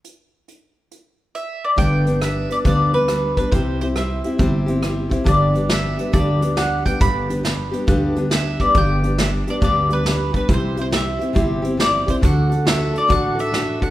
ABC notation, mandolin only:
X:1
M:4/4
L:1/8
Q:"Swing" 1/4=138
K:G
V:1 name="Mandolin"
z6 e d | g2 e d d B2 B | c c e4- e z | d2 e2 d2 f g |
b4 z2 e d | g2 e d d B2 B | c c e4 d c | f2 e d f e2 f |]